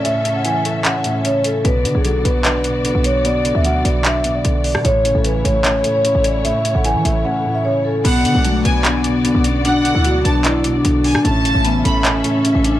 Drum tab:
CC |----------------|----------------|----------------|----------------|
HH |x-x-x-x-x-x-x-x-|x-x-x-x-x-x-x-x-|x-x-x-x-x-x-x-o-|x-x-x-x-x-x-x-x-|
CP |--------x-------|--------x-------|--------x-------|--------x-------|
SD |----------------|----------------|---------------r|----------------|

CC |----------------|x---------------|----------------|----------------|
HH |x-x-x-x---------|x-x-x-x-x-x-x-x-|x-x-x-x-x-x-x-o-|x-x-x-x-x-x-x-x-|
CP |----------------|--------x-------|--------x-------|--------x-------|
SD |----------------|----------------|---------------r|----------------|